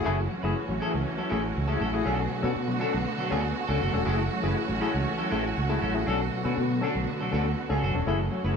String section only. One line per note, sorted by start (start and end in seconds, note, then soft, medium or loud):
0.05 2.04 E3 medium
0.05 8.04 A3 medium
0.05 2.04 C#4 medium
0.05 8.57 F#4 medium
2.06 4.04 D3 medium
2.06 4.05 B3 medium
4.05 6.04 E3 medium
4.05 6.04 C#4 medium
6.07 8.05 D3 medium
6.07 8.05 B3 medium
8.07 8.57 E3 medium
8.07 8.57 A3 medium
8.07 8.57 C#4 medium